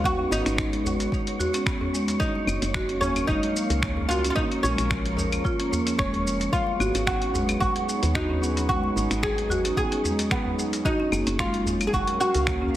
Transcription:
Already playing: fm bass D#2, analog synth pad G#3 B3 D#4 F#4 B4, synth texture C#5
0.04 marimba F#4, oud F#4, kick, shaker
0.19 marimba C#4, djembe slap
0.31 fm bass G#1, marimba B3, oud D#4, djembe slap, shaker
0.46 fm bass G#1, marimba C#4, finger snap, closed hi-hat, shaker
0.58 marimba G#3, finger snap, kick, shaker
0.72 closed hi-hat, djembe tone
0.85 djembe bass, shaker
0.99 closed hi-hat, djembe slap, djembe tone, shaker
1.12 kick, shaker
1.27 closed hi-hat
1.39 marimba F#4, djembe bass, shaker
1.53 marimba C#4, closed hi-hat, djembe slap, shaker
1.66 marimba B3, finger snap, kick, shaker
1.81 marimba C#4, djembe bass
1.93 marimba G#3, shaker
2.08 closed hi-hat, djembe slap, shaker
2.19 analog synth pad F#3, oud D#4, kick, shaker
2.35 analog synth pad A#3, djembe slap
2.47 fm bass F#1, djembe slap, claves, shaker
2.62 fm bass F#1, closed hi-hat, shaker
2.74 marimba F#4, analog synth pad F5, finger snap, kick, shaker
2.84 analog synth pad C#4
2.89 marimba C#4, closed hi-hat, djembe tone
2.95 analog synth pad A#4
3.01 marimba A#3, oud C#4, djembe bass, shaker
3.16 marimba C#4, closed hi-hat, djembe slap, djembe tone, claves, shaker
3.27 fm bass F#1, marimba G#3, oud D#4, kick, shaker
3.43 closed hi-hat, djembe tone
3.56 shaker
3.70 fm bass C#2, closed hi-hat, djembe tone, shaker
3.82 finger snap, kick, shaker
3.97 djembe bass
4.09 oud F4, marimba F#4, shaker
4.24 marimba C#4, closed hi-hat, shaker
4.30 oud F4
4.36 analog synth pad F3, marimba A#3, oud D#4, kick, shaker
4.52 marimba C#4, closed hi-hat, djembe slap
4.63 fm bass A#1, marimba G#3, oud C#4, djembe slap, shaker
4.78 fm bass A#1, finger snap, closed hi-hat, shaker
4.89 analog synth pad G#4, finger snap, kick, djembe tone, shaker
5.05 closed hi-hat, djembe tone
5.17 djembe bass, shaker
5.32 closed hi-hat, djembe slap, djembe tone, claves, shaker
5.45 marimba F4, kick, shaker
5.60 marimba C#4, closed hi-hat
5.72 marimba A#3, djembe bass, shaker
5.87 marimba C#4, closed hi-hat, djembe slap, shaker
5.99 fm bass F1, marimba G#3, oud C#4, finger snap, kick, shaker
6.13 closed hi-hat, djembe bass
6.27 shaker
6.40 closed hi-hat, djembe slap, shaker
6.53 analog synth pad F#3, oud F4, kick, shaker
6.63 analog synth pad B3
6.67 djembe slap
6.80 fm bass G#1, marimba F#4, djembe slap, claves, shaker
6.95 fm bass G#1, marimba C#4, analog synth pad D#4, closed hi-hat, shaker
7.07 marimba B3, oud F#4, finger snap, kick, shaker
7.22 marimba C#4, closed hi-hat, djembe tone
7.34 marimba G#3, djembe bass, shaker
7.48 closed hi-hat, djembe slap, djembe tone, claves, shaker
7.60 fm bass G#1, oud F#4, kick, shaker
7.74 analog synth pad B4, closed hi-hat, djembe tone
7.89 shaker
8.03 fm bass D#2, closed hi-hat, shaker
8.15 oud D#4, marimba F#4, finger snap, kick, shaker
8.29 marimba C#4, djembe bass
8.42 marimba B3, shaker
8.57 marimba C#4, closed hi-hat, shaker
8.69 marimba G#3, oud F#4, kick, shaker
8.84 djembe slap
8.96 fm bass G#1, djembe slap, shaker
9.11 fm bass G#1, finger snap, closed hi-hat, shaker
9.23 oud G#4, finger snap, kick, shaker
9.37 closed hi-hat, djembe tone
9.49 marimba F#4, djembe bass, shaker
9.64 marimba C#4, closed hi-hat, djembe slap, djembe tone, shaker
9.77 marimba B3, oud G#4, kick, shaker
9.92 marimba C#4, closed hi-hat
10.04 marimba G#3, djembe bass, shaker
10.19 closed hi-hat, djembe slap, shaker
10.31 oud B3, finger snap, kick, shaker
10.45 djembe bass
10.59 shaker
10.73 closed hi-hat, djembe slap, shaker
10.85 oud D#4, marimba F#4, kick, shaker
10.99 analog synth pad A#3, marimba C#4, djembe slap
11.07 analog synth pad C#4
11.12 fm bass F#1, marimba A#3, djembe slap, claves, shaker
11.27 fm bass F#1, marimba C#4, closed hi-hat, shaker
11.39 marimba G#3, oud F4, finger snap, kick, shaker
11.54 closed hi-hat, djembe tone
11.66 djembe bass, shaker
11.81 analog synth pad A#4 F5, closed hi-hat, djembe slap, djembe tone, claves, shaker
11.87 oud G#4
11.93 fm bass F#1, oud F#4, kick, shaker
12.07 closed hi-hat, djembe tone
12.20 marimba F#4, oud F#4, shaker
12.34 fm bass C#2, marimba C#4, closed hi-hat, shaker
12.47 marimba A#3, finger snap, kick, shaker
12.62 marimba C#4, djembe bass

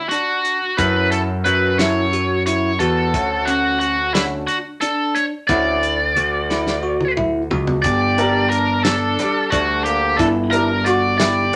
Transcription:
0.09 tine electric piano D4, lead electric guitar F#4, closed hi-hat
0.45 closed hi-hat
0.77 picked electric bass F#2, grand piano F#3 C#4 E4 A4, tine electric piano E4, lead electric guitar B4, kick, closed hi-hat
1.11 lead electric guitar A4, closed hi-hat
1.44 picked electric bass F#2, tine electric piano F#4, lead electric guitar B4, closed hi-hat
1.78 grand piano F#3 C#4 E4 A4, tine electric piano E4, lead electric guitar C#5, snare, closed hi-hat
2.13 tine electric piano F#4, closed hi-hat
2.46 tine electric piano E4, lead electric guitar C#5, closed hi-hat
2.79 picked electric bass E2, tine electric piano F#4, lead electric guitar A4, closed hi-hat
3.14 picked electric bass D2, grand piano D3 A3 C#4 F#4, kick, closed hi-hat
3.45 tine electric piano C#4, lead electric guitar F#4, closed hi-hat
3.79 lead electric guitar F#4, closed hi-hat
4.14 grand piano D3 A3 C#4 F#4, tine electric piano D4, lead electric guitar E4, snare, closed hi-hat
4.47 lead electric guitar F#4, closed hi-hat
4.81 tine electric piano D4, lead electric guitar A4, closed hi-hat
5.15 lead electric guitar C#5, closed hi-hat
5.47 picked electric bass D2, grand piano D3 A3 C#4 F#4, tine electric piano E4, lead electric guitar D5, kick, closed hi-hat
5.83 closed hi-hat
6.16 picked electric bass D2, tine electric piano F#4, closed hi-hat
6.50 tine electric piano E4, snare
6.67 snare
6.83 tine electric piano F#4
7.01 high tom
7.17 tine electric piano E4, kick, mid tom
7.51 picked electric bass C#2, tine electric piano F#4, floor tom
7.67 floor tom
7.82 picked electric bass G1, flugelhorn G4, lead electric guitar D5, kick, closed hi-hat
8.18 grand piano G3 D4 A4 A#4, tine electric piano D4, closed hi-hat
8.50 flugelhorn D4, lead electric guitar A#4, closed hi-hat
8.84 flugelhorn D4, tine electric piano D4, lead electric guitar A4, snare, closed hi-hat
9.19 grand piano G3 D4 A4 D5, snare, closed hi-hat
9.50 picked electric bass D2, flugelhorn A3, tine electric piano D4, lead electric guitar F#4, kick, closed hi-hat
9.84 flugelhorn A#3, lead electric guitar G4, closed hi-hat
10.17 picked electric bass G1, flugelhorn D4, tine electric piano E4, lead electric guitar A4, kick, closed hi-hat
10.51 grand piano G3 D4 A4 A#4, flugelhorn D4, lead electric guitar A#4, closed hi-hat
10.84 flugelhorn F#4, tine electric piano F#4, lead electric guitar D5, closed hi-hat
11.18 tine electric piano E4, flugelhorn G4, lead electric guitar D5, snare, closed hi-hat

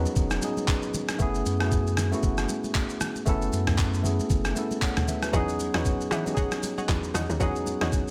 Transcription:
Already playing: tine electric piano F#3 B3 C#4 D#4 G#4 A#4, downlifter
0.00 tine electric piano B4
0.06 high conga, shaker
0.16 sub bass E1, kick, low conga, shaker
0.30 cross-stick, shaker
0.41 tine electric piano F#3 B3 C#4 D#4 G#4, high conga, shaker
0.57 high conga, shaker
0.68 kick, clap, shaker
0.82 shaker
0.94 high conga, low conga, shaker
1.09 cross-stick, high conga, shaker
1.18 sub bass F#1, tine electric piano A3 B3 C#4 E4 G#4, kick, low conga, shaker
1.35 shaker
1.46 sub bass F#2, high conga, shaker
1.59 tine electric piano A3 B3 C#4 E4 F#4, cross-stick
1.69 tine electric piano G#4, kick, shaker
1.87 shaker
1.97 cross-stick, high conga, low conga, shaker
2.11 tine electric piano A3 B3 C#4 E4 F#4, high conga, shaker
2.23 sub bass F#1, kick, low conga, shaker
2.37 cross-stick, shaker
2.49 high conga, shaker
2.64 high conga, shaker
2.75 kick, clap, shaker
2.89 shaker
3.01 cross-stick, high conga, low conga, shaker
3.15 high conga, shaker
3.25 sub bass F#1, tine electric piano A3 B3 C#4 E4 A4, kick, low conga, shaker
3.42 shaker
3.52 sub bass F#2, high conga, shaker
3.67 cross-stick, mid tom
3.78 kick, clap, shaker
3.94 shaker
4.03 tine electric piano A3 B3 C#4 E4 G#4, high conga, low conga, shaker
4.19 high conga, shaker
4.30 sub bass F#1, kick, low conga, shaker
4.44 cross-stick, shaker
4.55 tine electric piano A3 B3 C#4 E4 A4, high conga, shaker
4.71 high conga, shaker
4.82 tine electric piano C#5 F#5, kick, clap, shaker
4.96 cross-stick, mid tom, shaker
5.08 tine electric piano B4 E5, high conga, low conga, shaker
5.22 tine electric piano F#4 B4, cross-stick, high conga, shaker
5.32 log drum bass E2, tine electric piano F#3 B3 C#4 D#4 G#4, synth stab G#4 C#5 D#5 F#5, kick, low conga, shaker
5.49 shaker
5.59 high conga, shaker
5.73 log drum bass E2, tine electric piano F#3 B3 C#4 D#4 F#4, synth stab G#4 C#5 D#5 F#5, cross-stick
5.85 kick, shaker
6.01 shaker
6.11 log drum bass E3, synth stab G#4 C#5 D#5 F#5, cross-stick, high conga, low conga, shaker
6.25 tine electric piano F#3 B3 C#4 D#4 G4, high conga, shaker
6.35 tine electric piano G#4, synth stab G#4 C#5 D#5 F#5, kick, low conga, shaker
6.51 cross-stick, shaker
6.63 high conga, shaker
6.78 synth stab G#4 C#5 D#5 F#5, high conga, shaker
6.88 log drum bass E2, kick, clap, shaker
7.03 shaker
7.14 log drum bass E2, synth stab G#4 C#5 D#5 F#5, cross-stick, high conga, low conga, shaker
7.29 log drum bass D#2, high conga, shaker
7.39 log drum bass E2, tine electric piano F#3 B3 C#4 D#4 G#4, synth stab G#4 C#5 D#5 F#5, kick, low conga, shaker
7.56 shaker
7.66 high conga, shaker
7.81 log drum bass E2, synth stab G#4 C#5 D#5 F#5, cross-stick
7.92 kick, shaker

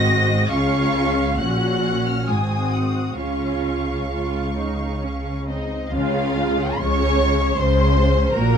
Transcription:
Already playing: double bass section G#1, cello section G#2, viola section C4 F#4, violin section D#5 A#6
0.51 double bass section C#2, cello section C#3, viola section C#4 F4, violin section F5 C#6
1.39 double bass section A#1, cello section A#2, viola section C#4 F#4, violin section F#5 F#6
2.07 violin section F6
2.28 double bass section G#1, cello section G#2, viola section C4 F#4, violin section G#5 D#6
2.73 violin section F#5
3.17 double bass section C#2, cello section C#3, viola section C#4 F4, violin section F5 C#6
4.10 viola section F4
4.56 viola section D#4
5.02 viola section C#4
5.47 viola section C4, violin section D#4 D#5
5.91 double bass section C#2, cello section C#3, viola section G#3 F4, violin section F4 F5
6.13 viola section C#4 G#4
6.35 viola section G#3 F4
6.58 viola section C#4 G#4
6.79 double bass section C#2, cello section C#3, viola section G#3 F4, violin section C#5 C#6
7.00 viola section C#4 G#4
7.19 viola section G#3 F4
7.38 viola section C#4 G#4
7.57 double bass section C#2, cello section C#3, viola section G#3 F4, violin section C5 C6
7.76 viola section C#4 G#4
7.95 viola section G#3 F4
8.14 viola section C#4 G#4
8.33 double bass section A#1, cello section A#2, viola section A#3 F#4, violin section A#4 A#5
8.54 viola section C#4 A#4

